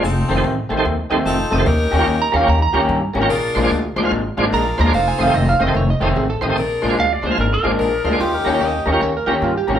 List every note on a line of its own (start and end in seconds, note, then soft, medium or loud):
0.03 0.23 F1 medium
0.03 0.55 C4 medium
0.03 0.55 D#4 medium
0.03 0.55 F4 medium
0.03 0.55 A4 medium
0.28 0.40 F1 medium
0.28 0.52 F2 medium
0.28 0.52 D#3 medium
0.28 0.52 A3 medium
0.28 0.52 C4 loud
0.28 0.33 A4 medium
0.28 0.34 C5 medium
0.36 0.44 D#4 medium
0.36 0.44 G4 medium
0.36 0.45 A4 medium
0.36 0.45 C5 medium
0.44 0.64 A1 medium
0.69 0.81 A1 medium
0.69 0.93 F2 medium
0.69 0.93 D#3 medium
0.69 0.93 A3 medium
0.69 0.92 C4 medium
0.69 0.74 A4 medium
0.69 0.75 C5 medium
0.77 0.85 D#4 medium
0.77 0.85 G4 medium
0.77 0.86 A4 medium
0.77 0.86 C5 medium
0.85 1.05 D#2 medium
1.10 1.22 D#2 medium
1.10 1.34 F2 medium
1.10 1.34 D#3 medium
1.10 1.33 A3 medium
1.10 1.33 C4 medium
1.10 1.18 D#4 medium
1.10 1.19 G4 medium
1.10 1.19 A4 medium
1.10 1.19 C5 loud
1.25 1.45 F1 medium
1.25 1.67 C4 medium
1.25 1.65 D#4 medium
1.25 1.67 F4 medium
1.25 1.67 A4 loud
1.51 1.63 F1 loud
1.51 1.67 F2 medium
1.51 1.67 D#3 medium
1.51 1.66 A3 medium
1.51 1.66 C4 medium
1.51 1.55 A4 medium
1.51 1.56 D#5 loud
1.58 1.66 D#4 medium
1.58 1.66 G4 medium
1.58 1.67 A4 medium
1.58 1.67 C5 medium
1.66 1.86 D#2 medium
1.66 2.36 C#4 medium
1.66 2.36 D#4 medium
1.66 2.36 G4 medium
1.66 2.36 A#4 loud
1.91 2.03 D#2 medium
1.91 2.15 D#3 medium
1.91 2.15 A#3 medium
1.91 2.15 C#4 medium
1.91 2.15 G4 medium
1.91 1.96 A#4 medium
1.91 1.97 C#5 loud
1.99 2.07 F4 medium
1.99 2.07 G4 medium
1.99 2.07 A#4 medium
1.99 2.08 C#5 medium
2.07 2.27 D#2 medium
2.22 2.35 A#5 loud
2.32 2.45 D#2 medium
2.32 2.56 D#3 medium
2.32 2.56 A#3 medium
2.32 2.56 C#4 medium
2.32 2.56 G4 medium
2.32 2.37 A#4 medium
2.32 2.37 C#5 medium
2.32 2.48 F5 loud
2.40 2.48 F4 medium
2.40 2.48 G4 medium
2.40 2.48 A#4 medium
2.40 2.49 C#5 medium
2.48 2.68 D#2 medium
2.48 2.61 A#5 loud
2.62 3.02 A#5 loud
2.73 2.85 D#2 medium
2.73 2.97 D#3 medium
2.73 2.97 A#3 medium
2.73 2.97 C#4 loud
2.73 2.81 F4 medium
2.73 2.81 G4 medium
2.73 2.97 G4 loud
2.73 2.82 A#4 medium
2.73 2.82 C#5 medium
2.89 3.08 G2 medium
3.14 3.26 G#1 medium
3.14 3.30 D#3 medium
3.14 3.30 A#3 medium
3.14 3.30 C#4 medium
3.14 3.30 G4 medium
3.14 3.18 A#4 medium
3.14 3.19 C#5 medium
3.21 3.29 F4 medium
3.21 3.29 G4 medium
3.21 3.30 A#4 medium
3.21 3.30 C#5 loud
3.29 3.49 A#1 medium
3.29 3.81 D4 medium
3.29 3.81 F4 medium
3.29 3.81 G#4 medium
3.29 3.81 A#4 loud
3.55 3.67 A#1 medium
3.55 3.79 A#2 medium
3.55 3.78 F3 medium
3.55 3.78 G#3 medium
3.55 3.78 D4 loud
3.55 3.59 C5 loud
3.55 3.60 D5 loud
3.62 3.70 F4 medium
3.62 3.71 G#4 medium
3.62 3.71 C5 medium
3.62 3.71 D5 medium
3.71 3.90 D2 loud
3.96 4.07 D2 loud
3.96 4.19 A#2 medium
3.96 4.19 F3 medium
3.96 4.19 G#3 medium
3.96 4.19 D4 medium
3.96 4.00 C5 loud
3.96 4.01 D5 medium
4.03 4.11 F4 medium
4.03 4.11 G#4 medium
4.03 4.12 C5 medium
4.03 4.12 F5 medium
4.11 4.31 G#1 medium
4.37 4.48 G#1 medium
4.37 4.60 A#2 medium
4.37 4.60 F3 medium
4.37 4.60 G#3 medium
4.37 4.60 D4 loud
4.37 4.45 F4 medium
4.37 4.45 G#4 medium
4.37 4.45 C5 medium
4.37 4.46 D5 loud
4.52 4.72 A#1 medium
4.52 4.93 D4 medium
4.52 4.92 F4 medium
4.52 4.93 G#4 medium
4.52 4.93 A#4 medium
4.52 4.66 A#5 loud
4.78 4.90 D#2 loud
4.78 4.93 A#2 medium
4.78 4.93 F3 medium
4.78 4.93 G#3 medium
4.78 4.93 D4 medium
4.78 4.82 C5 medium
4.78 4.83 D5 medium
4.78 4.93 A#5 loud
4.85 4.93 F4 medium
4.85 4.93 G#4 medium
4.85 4.93 C5 medium
4.85 4.94 D5 medium
4.93 5.13 F1 medium
4.93 5.63 D#4 medium
4.93 5.63 F4 medium
4.93 5.63 A4 medium
4.93 5.63 C5 medium
4.93 5.07 F5 medium
5.08 5.20 G#5 medium
5.18 5.30 F1 medium
5.18 5.42 F2 medium
5.18 5.42 D#3 medium
5.18 5.41 A3 medium
5.18 5.41 C4 loud
5.18 5.23 C5 medium
5.18 5.24 D#5 medium
5.18 5.34 F5 loud
5.26 5.34 G4 medium
5.26 5.34 A4 medium
5.26 5.34 C5 medium
5.26 5.34 D#5 medium
5.34 5.53 F1 loud
5.34 5.48 D#5 loud
5.49 5.61 F5 loud
5.59 5.71 F1 medium
5.59 5.83 F2 medium
5.59 5.83 D#3 medium
5.59 5.82 A3 medium
5.59 5.82 C4 medium
5.59 5.63 C5 medium
5.59 5.64 D#5 medium
5.59 5.75 D#5 loud
5.67 5.74 G4 medium
5.67 5.75 A4 medium
5.67 5.75 C5 medium
5.67 5.75 D#5 medium
5.75 5.94 F1 medium
5.75 5.89 C#5 loud
5.90 6.02 D#5 loud
6.00 6.12 F1 medium
6.00 6.24 F2 medium
6.00 6.24 D#3 medium
6.00 6.23 A3 loud
6.00 6.23 C4 loud
6.00 6.08 G4 medium
6.00 6.08 A4 medium
6.00 6.09 C5 medium
6.00 6.15 C#5 medium
6.00 6.09 D#5 medium
6.16 6.35 A1 medium
6.16 6.29 G#4 medium
6.30 6.56 A4 loud
6.41 6.53 A1 loud
6.41 6.57 F2 medium
6.41 6.56 D#3 medium
6.41 6.56 A3 medium
6.41 6.56 C4 medium
6.41 6.45 C5 medium
6.41 6.46 D#5 medium
6.48 6.56 G4 medium
6.48 6.56 A4 medium
6.48 6.57 C5 medium
6.48 6.57 D#5 medium
6.56 6.76 A#1 medium
6.56 7.08 D4 medium
6.56 7.08 G#4 medium
6.56 7.08 A#4 medium
6.82 6.94 A#1 medium
6.82 7.05 A#2 medium
6.82 7.05 F3 medium
6.82 7.05 G#3 medium
6.82 7.05 D4 medium
6.82 6.86 C5 medium
6.82 6.87 D5 medium
6.89 6.97 F4 medium
6.89 6.97 G#4 medium
6.89 6.97 C5 medium
6.89 6.98 D5 medium
6.98 7.17 D2 medium
6.98 7.13 F5 medium
7.13 7.25 D5 medium
7.22 7.34 D2 medium
7.22 7.46 A#2 medium
7.22 7.46 F3 medium
7.22 7.46 G#3 medium
7.22 7.46 D4 medium
7.22 7.26 C5 medium
7.22 7.27 D5 medium
7.27 7.37 F4 medium
7.27 7.38 G#4 medium
7.27 7.39 C5 medium
7.27 7.38 C5 medium
7.31 7.38 F5 medium
7.38 7.57 G#1 medium
7.38 7.53 A#4 medium
7.54 8.72 A#4 medium
7.63 7.75 G#1 medium
7.63 7.87 A#2 medium
7.63 7.87 F3 medium
7.63 7.87 G#3 medium
7.63 7.87 D4 loud
7.63 7.71 F4 medium
7.63 7.71 G#4 medium
7.63 7.72 C5 medium
7.63 7.72 D5 medium
7.78 7.98 A#1 medium
7.78 8.20 D4 medium
7.78 8.20 G#4 medium
7.78 8.20 A#4 medium
8.04 8.16 D2 medium
8.04 8.20 A#2 medium
8.04 8.20 F3 medium
8.04 8.20 G#3 medium
8.04 8.19 D4 medium
8.04 8.09 C5 medium
8.04 8.09 F5 medium
8.11 8.19 F4 medium
8.11 8.19 G#4 medium
8.11 8.20 C5 medium
8.11 8.20 D5 medium
8.19 8.39 D#2 medium
8.19 8.89 C#4 medium
8.19 8.90 D#4 medium
8.19 8.33 F4 medium
8.19 8.90 G4 loud
8.34 8.47 A#4 medium
8.45 8.57 D#2 medium
8.45 8.69 D#3 medium
8.45 8.68 A#3 medium
8.45 8.68 C#4 medium
8.45 8.68 G4 medium
8.45 8.49 A#4 medium
8.45 8.50 C#5 medium
8.45 8.61 C#5 medium
8.53 8.60 F4 medium
8.53 8.61 G4 medium
8.53 8.61 A#4 medium
8.53 8.61 C#5 medium
8.60 8.80 D#2 medium
8.60 9.01 D#5 medium
8.86 8.97 D#2 medium
8.86 9.10 D#3 medium
8.86 9.10 A#3 medium
8.86 9.09 C#4 medium
8.86 9.09 G4 medium
8.86 8.90 A#4 medium
8.86 8.91 C#5 medium
8.92 9.01 F4 medium
8.92 9.01 G4 medium
8.92 9.01 A#4 medium
8.92 9.02 C#5 medium
9.01 9.21 D#2 medium
9.01 9.15 C#5 medium
9.17 9.29 A#4 medium
9.26 9.38 D#2 medium
9.26 9.51 D#3 medium
9.26 9.50 A#3 medium
9.26 9.50 C#4 medium
9.26 9.34 F4 medium
9.26 9.35 G4 medium
9.26 9.50 G4 loud
9.26 9.35 A#4 medium
9.26 9.35 C#5 medium
9.31 9.43 C#5 medium
9.42 9.62 G2 medium
9.42 9.56 F4 medium
9.57 9.79 G4 loud
9.67 9.79 G#1 medium
9.67 9.79 D#3 medium
9.67 9.79 A#3 medium
9.67 9.79 C#4 medium
9.67 9.79 G4 medium
9.67 9.72 A#4 medium
9.67 9.73 C#5 medium
9.75 9.79 F4 medium
9.75 9.79 G4 medium
9.75 9.79 A#4 medium